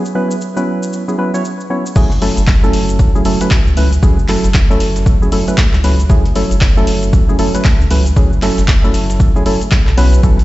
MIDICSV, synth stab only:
0, 0, Header, 1, 2, 480
1, 0, Start_track
1, 0, Key_signature, 3, "minor"
1, 0, Tempo, 517241
1, 1819, Time_signature, 4, 2, 24, 8
1, 9693, End_track
2, 0, Start_track
2, 0, Title_t, "Synth stab"
2, 0, Program_c, 0, 62
2, 138, Note_on_c, 0, 54, 87
2, 139, Note_on_c, 0, 59, 80
2, 140, Note_on_c, 0, 61, 80
2, 141, Note_on_c, 0, 64, 78
2, 142, Note_on_c, 0, 71, 100
2, 326, Note_off_c, 0, 54, 0
2, 326, Note_off_c, 0, 59, 0
2, 327, Note_off_c, 0, 61, 0
2, 327, Note_off_c, 0, 64, 0
2, 328, Note_off_c, 0, 71, 0
2, 522, Note_on_c, 0, 54, 99
2, 523, Note_on_c, 0, 59, 90
2, 524, Note_on_c, 0, 61, 92
2, 525, Note_on_c, 0, 64, 90
2, 526, Note_on_c, 0, 71, 106
2, 968, Note_off_c, 0, 54, 0
2, 968, Note_off_c, 0, 59, 0
2, 969, Note_off_c, 0, 61, 0
2, 969, Note_off_c, 0, 64, 0
2, 970, Note_off_c, 0, 71, 0
2, 1002, Note_on_c, 0, 54, 74
2, 1003, Note_on_c, 0, 59, 64
2, 1004, Note_on_c, 0, 61, 62
2, 1005, Note_on_c, 0, 64, 66
2, 1006, Note_on_c, 0, 68, 78
2, 1079, Note_off_c, 0, 54, 0
2, 1079, Note_off_c, 0, 59, 0
2, 1080, Note_off_c, 0, 61, 0
2, 1080, Note_off_c, 0, 64, 0
2, 1081, Note_off_c, 0, 68, 0
2, 1096, Note_on_c, 0, 54, 88
2, 1098, Note_on_c, 0, 59, 87
2, 1098, Note_on_c, 0, 61, 79
2, 1099, Note_on_c, 0, 64, 82
2, 1101, Note_on_c, 0, 71, 102
2, 1221, Note_off_c, 0, 54, 0
2, 1222, Note_off_c, 0, 59, 0
2, 1222, Note_off_c, 0, 61, 0
2, 1223, Note_off_c, 0, 64, 0
2, 1223, Note_off_c, 0, 71, 0
2, 1242, Note_on_c, 0, 54, 81
2, 1243, Note_on_c, 0, 59, 75
2, 1244, Note_on_c, 0, 61, 74
2, 1245, Note_on_c, 0, 64, 72
2, 1246, Note_on_c, 0, 73, 90
2, 1328, Note_off_c, 0, 54, 0
2, 1329, Note_off_c, 0, 59, 0
2, 1330, Note_off_c, 0, 61, 0
2, 1330, Note_off_c, 0, 64, 0
2, 1331, Note_off_c, 0, 73, 0
2, 1577, Note_on_c, 0, 54, 77
2, 1579, Note_on_c, 0, 59, 68
2, 1579, Note_on_c, 0, 61, 70
2, 1580, Note_on_c, 0, 64, 69
2, 1581, Note_on_c, 0, 73, 81
2, 1710, Note_off_c, 0, 54, 0
2, 1710, Note_off_c, 0, 59, 0
2, 1710, Note_off_c, 0, 61, 0
2, 1711, Note_off_c, 0, 64, 0
2, 1711, Note_off_c, 0, 73, 0
2, 1818, Note_on_c, 0, 54, 99
2, 1819, Note_on_c, 0, 57, 89
2, 1820, Note_on_c, 0, 61, 88
2, 1821, Note_on_c, 0, 64, 86
2, 1822, Note_on_c, 0, 68, 109
2, 1950, Note_off_c, 0, 54, 0
2, 1950, Note_off_c, 0, 57, 0
2, 1951, Note_off_c, 0, 61, 0
2, 1951, Note_off_c, 0, 64, 0
2, 1952, Note_off_c, 0, 68, 0
2, 2056, Note_on_c, 0, 54, 89
2, 2057, Note_on_c, 0, 57, 86
2, 2059, Note_on_c, 0, 61, 81
2, 2060, Note_on_c, 0, 64, 82
2, 2061, Note_on_c, 0, 69, 101
2, 2245, Note_off_c, 0, 54, 0
2, 2246, Note_off_c, 0, 57, 0
2, 2247, Note_off_c, 0, 61, 0
2, 2247, Note_off_c, 0, 64, 0
2, 2248, Note_off_c, 0, 69, 0
2, 2442, Note_on_c, 0, 54, 100
2, 2443, Note_on_c, 0, 57, 95
2, 2444, Note_on_c, 0, 61, 93
2, 2445, Note_on_c, 0, 64, 95
2, 2446, Note_on_c, 0, 69, 114
2, 2888, Note_off_c, 0, 54, 0
2, 2888, Note_off_c, 0, 57, 0
2, 2889, Note_off_c, 0, 61, 0
2, 2890, Note_off_c, 0, 64, 0
2, 2890, Note_off_c, 0, 69, 0
2, 2922, Note_on_c, 0, 54, 71
2, 2923, Note_on_c, 0, 57, 63
2, 2925, Note_on_c, 0, 61, 68
2, 2925, Note_on_c, 0, 64, 70
2, 2926, Note_on_c, 0, 68, 81
2, 2999, Note_off_c, 0, 54, 0
2, 2999, Note_off_c, 0, 57, 0
2, 3000, Note_off_c, 0, 61, 0
2, 3000, Note_off_c, 0, 64, 0
2, 3001, Note_off_c, 0, 68, 0
2, 3017, Note_on_c, 0, 54, 96
2, 3018, Note_on_c, 0, 57, 86
2, 3019, Note_on_c, 0, 61, 84
2, 3020, Note_on_c, 0, 64, 84
2, 3021, Note_on_c, 0, 69, 104
2, 3141, Note_off_c, 0, 54, 0
2, 3142, Note_off_c, 0, 57, 0
2, 3142, Note_off_c, 0, 61, 0
2, 3143, Note_off_c, 0, 64, 0
2, 3143, Note_off_c, 0, 69, 0
2, 3162, Note_on_c, 0, 54, 80
2, 3164, Note_on_c, 0, 57, 76
2, 3164, Note_on_c, 0, 61, 78
2, 3166, Note_on_c, 0, 64, 77
2, 3167, Note_on_c, 0, 71, 91
2, 3249, Note_off_c, 0, 54, 0
2, 3250, Note_off_c, 0, 57, 0
2, 3250, Note_off_c, 0, 61, 0
2, 3251, Note_off_c, 0, 64, 0
2, 3251, Note_off_c, 0, 71, 0
2, 3498, Note_on_c, 0, 54, 73
2, 3499, Note_on_c, 0, 57, 73
2, 3500, Note_on_c, 0, 61, 70
2, 3501, Note_on_c, 0, 64, 70
2, 3502, Note_on_c, 0, 71, 87
2, 3630, Note_off_c, 0, 54, 0
2, 3630, Note_off_c, 0, 57, 0
2, 3631, Note_off_c, 0, 61, 0
2, 3631, Note_off_c, 0, 64, 0
2, 3632, Note_off_c, 0, 71, 0
2, 3736, Note_on_c, 0, 54, 99
2, 3737, Note_on_c, 0, 57, 87
2, 3738, Note_on_c, 0, 61, 87
2, 3739, Note_on_c, 0, 64, 90
2, 3740, Note_on_c, 0, 68, 107
2, 3869, Note_off_c, 0, 54, 0
2, 3869, Note_off_c, 0, 57, 0
2, 3870, Note_off_c, 0, 61, 0
2, 3870, Note_off_c, 0, 64, 0
2, 3871, Note_off_c, 0, 68, 0
2, 3976, Note_on_c, 0, 54, 92
2, 3977, Note_on_c, 0, 57, 82
2, 3979, Note_on_c, 0, 61, 81
2, 3980, Note_on_c, 0, 64, 82
2, 3980, Note_on_c, 0, 69, 98
2, 4165, Note_off_c, 0, 54, 0
2, 4166, Note_off_c, 0, 57, 0
2, 4166, Note_off_c, 0, 61, 0
2, 4167, Note_off_c, 0, 64, 0
2, 4167, Note_off_c, 0, 69, 0
2, 4362, Note_on_c, 0, 54, 99
2, 4363, Note_on_c, 0, 57, 95
2, 4364, Note_on_c, 0, 61, 99
2, 4365, Note_on_c, 0, 64, 95
2, 4366, Note_on_c, 0, 69, 111
2, 4808, Note_off_c, 0, 54, 0
2, 4809, Note_off_c, 0, 57, 0
2, 4809, Note_off_c, 0, 61, 0
2, 4810, Note_off_c, 0, 64, 0
2, 4810, Note_off_c, 0, 69, 0
2, 4842, Note_on_c, 0, 54, 71
2, 4843, Note_on_c, 0, 57, 65
2, 4844, Note_on_c, 0, 61, 67
2, 4845, Note_on_c, 0, 64, 65
2, 4846, Note_on_c, 0, 68, 79
2, 4919, Note_off_c, 0, 54, 0
2, 4919, Note_off_c, 0, 57, 0
2, 4920, Note_off_c, 0, 61, 0
2, 4920, Note_off_c, 0, 64, 0
2, 4921, Note_off_c, 0, 68, 0
2, 4936, Note_on_c, 0, 54, 97
2, 4937, Note_on_c, 0, 57, 85
2, 4939, Note_on_c, 0, 61, 82
2, 4939, Note_on_c, 0, 64, 87
2, 4941, Note_on_c, 0, 69, 101
2, 5061, Note_off_c, 0, 54, 0
2, 5061, Note_off_c, 0, 57, 0
2, 5062, Note_off_c, 0, 61, 0
2, 5062, Note_off_c, 0, 64, 0
2, 5063, Note_off_c, 0, 69, 0
2, 5082, Note_on_c, 0, 54, 82
2, 5083, Note_on_c, 0, 57, 74
2, 5084, Note_on_c, 0, 61, 78
2, 5085, Note_on_c, 0, 64, 75
2, 5087, Note_on_c, 0, 71, 91
2, 5169, Note_off_c, 0, 54, 0
2, 5169, Note_off_c, 0, 57, 0
2, 5170, Note_off_c, 0, 61, 0
2, 5170, Note_off_c, 0, 64, 0
2, 5171, Note_off_c, 0, 71, 0
2, 5416, Note_on_c, 0, 54, 78
2, 5417, Note_on_c, 0, 57, 70
2, 5418, Note_on_c, 0, 61, 72
2, 5419, Note_on_c, 0, 64, 74
2, 5421, Note_on_c, 0, 71, 84
2, 5549, Note_off_c, 0, 54, 0
2, 5549, Note_off_c, 0, 57, 0
2, 5550, Note_off_c, 0, 61, 0
2, 5550, Note_off_c, 0, 64, 0
2, 5551, Note_off_c, 0, 71, 0
2, 5657, Note_on_c, 0, 54, 95
2, 5657, Note_on_c, 0, 57, 93
2, 5659, Note_on_c, 0, 61, 89
2, 5660, Note_on_c, 0, 64, 90
2, 5661, Note_on_c, 0, 68, 108
2, 5789, Note_off_c, 0, 54, 0
2, 5790, Note_off_c, 0, 57, 0
2, 5790, Note_off_c, 0, 61, 0
2, 5791, Note_off_c, 0, 64, 0
2, 5791, Note_off_c, 0, 68, 0
2, 5895, Note_on_c, 0, 54, 88
2, 5896, Note_on_c, 0, 57, 78
2, 5898, Note_on_c, 0, 61, 81
2, 5898, Note_on_c, 0, 64, 81
2, 5899, Note_on_c, 0, 69, 98
2, 6085, Note_off_c, 0, 54, 0
2, 6085, Note_off_c, 0, 57, 0
2, 6086, Note_off_c, 0, 61, 0
2, 6086, Note_off_c, 0, 64, 0
2, 6087, Note_off_c, 0, 69, 0
2, 6281, Note_on_c, 0, 54, 102
2, 6282, Note_on_c, 0, 57, 92
2, 6283, Note_on_c, 0, 61, 92
2, 6284, Note_on_c, 0, 64, 93
2, 6285, Note_on_c, 0, 69, 112
2, 6728, Note_off_c, 0, 54, 0
2, 6728, Note_off_c, 0, 57, 0
2, 6728, Note_off_c, 0, 61, 0
2, 6729, Note_off_c, 0, 64, 0
2, 6729, Note_off_c, 0, 69, 0
2, 6761, Note_on_c, 0, 54, 73
2, 6762, Note_on_c, 0, 57, 65
2, 6763, Note_on_c, 0, 61, 67
2, 6764, Note_on_c, 0, 64, 66
2, 6765, Note_on_c, 0, 68, 77
2, 6838, Note_off_c, 0, 54, 0
2, 6839, Note_off_c, 0, 57, 0
2, 6839, Note_off_c, 0, 61, 0
2, 6839, Note_off_c, 0, 64, 0
2, 6840, Note_off_c, 0, 68, 0
2, 6855, Note_on_c, 0, 54, 95
2, 6856, Note_on_c, 0, 57, 91
2, 6857, Note_on_c, 0, 61, 83
2, 6858, Note_on_c, 0, 64, 88
2, 6859, Note_on_c, 0, 69, 102
2, 6980, Note_off_c, 0, 54, 0
2, 6981, Note_off_c, 0, 57, 0
2, 6981, Note_off_c, 0, 61, 0
2, 6982, Note_off_c, 0, 64, 0
2, 6982, Note_off_c, 0, 69, 0
2, 7000, Note_on_c, 0, 54, 83
2, 7001, Note_on_c, 0, 57, 74
2, 7002, Note_on_c, 0, 61, 77
2, 7003, Note_on_c, 0, 64, 73
2, 7004, Note_on_c, 0, 71, 91
2, 7088, Note_off_c, 0, 54, 0
2, 7088, Note_off_c, 0, 57, 0
2, 7089, Note_off_c, 0, 61, 0
2, 7089, Note_off_c, 0, 64, 0
2, 7090, Note_off_c, 0, 71, 0
2, 7335, Note_on_c, 0, 54, 77
2, 7336, Note_on_c, 0, 57, 74
2, 7338, Note_on_c, 0, 61, 69
2, 7339, Note_on_c, 0, 64, 71
2, 7340, Note_on_c, 0, 71, 82
2, 7469, Note_off_c, 0, 54, 0
2, 7469, Note_off_c, 0, 57, 0
2, 7470, Note_off_c, 0, 61, 0
2, 7470, Note_off_c, 0, 64, 0
2, 7471, Note_off_c, 0, 71, 0
2, 7576, Note_on_c, 0, 54, 96
2, 7577, Note_on_c, 0, 57, 83
2, 7578, Note_on_c, 0, 61, 91
2, 7579, Note_on_c, 0, 64, 85
2, 7580, Note_on_c, 0, 68, 107
2, 7709, Note_off_c, 0, 54, 0
2, 7709, Note_off_c, 0, 57, 0
2, 7710, Note_off_c, 0, 61, 0
2, 7711, Note_off_c, 0, 64, 0
2, 7711, Note_off_c, 0, 68, 0
2, 7815, Note_on_c, 0, 54, 93
2, 7816, Note_on_c, 0, 57, 83
2, 7818, Note_on_c, 0, 61, 78
2, 7818, Note_on_c, 0, 64, 82
2, 7820, Note_on_c, 0, 69, 94
2, 8005, Note_off_c, 0, 54, 0
2, 8005, Note_off_c, 0, 57, 0
2, 8006, Note_off_c, 0, 61, 0
2, 8006, Note_off_c, 0, 64, 0
2, 8007, Note_off_c, 0, 69, 0
2, 8201, Note_on_c, 0, 54, 101
2, 8202, Note_on_c, 0, 57, 92
2, 8203, Note_on_c, 0, 61, 92
2, 8205, Note_on_c, 0, 64, 89
2, 8205, Note_on_c, 0, 69, 107
2, 8648, Note_off_c, 0, 54, 0
2, 8648, Note_off_c, 0, 57, 0
2, 8649, Note_off_c, 0, 61, 0
2, 8649, Note_off_c, 0, 64, 0
2, 8650, Note_off_c, 0, 69, 0
2, 8682, Note_on_c, 0, 54, 71
2, 8683, Note_on_c, 0, 57, 66
2, 8684, Note_on_c, 0, 61, 67
2, 8685, Note_on_c, 0, 64, 69
2, 8686, Note_on_c, 0, 68, 78
2, 8759, Note_off_c, 0, 54, 0
2, 8759, Note_off_c, 0, 57, 0
2, 8760, Note_off_c, 0, 61, 0
2, 8760, Note_off_c, 0, 64, 0
2, 8761, Note_off_c, 0, 68, 0
2, 8776, Note_on_c, 0, 54, 99
2, 8777, Note_on_c, 0, 57, 87
2, 8778, Note_on_c, 0, 61, 86
2, 8779, Note_on_c, 0, 64, 87
2, 8780, Note_on_c, 0, 69, 109
2, 8909, Note_off_c, 0, 54, 0
2, 8909, Note_off_c, 0, 57, 0
2, 8910, Note_off_c, 0, 61, 0
2, 8910, Note_off_c, 0, 64, 0
2, 8911, Note_off_c, 0, 69, 0
2, 9256, Note_on_c, 0, 54, 101
2, 9256, Note_on_c, 0, 59, 95
2, 9258, Note_on_c, 0, 61, 95
2, 9258, Note_on_c, 0, 64, 91
2, 9260, Note_on_c, 0, 71, 110
2, 9474, Note_off_c, 0, 54, 0
2, 9475, Note_off_c, 0, 59, 0
2, 9475, Note_off_c, 0, 61, 0
2, 9476, Note_off_c, 0, 64, 0
2, 9476, Note_off_c, 0, 71, 0
2, 9497, Note_on_c, 0, 54, 96
2, 9497, Note_on_c, 0, 59, 85
2, 9498, Note_on_c, 0, 61, 90
2, 9500, Note_on_c, 0, 64, 89
2, 9501, Note_on_c, 0, 69, 109
2, 9629, Note_off_c, 0, 54, 0
2, 9630, Note_off_c, 0, 59, 0
2, 9630, Note_off_c, 0, 61, 0
2, 9631, Note_off_c, 0, 64, 0
2, 9631, Note_off_c, 0, 69, 0
2, 9693, End_track
0, 0, End_of_file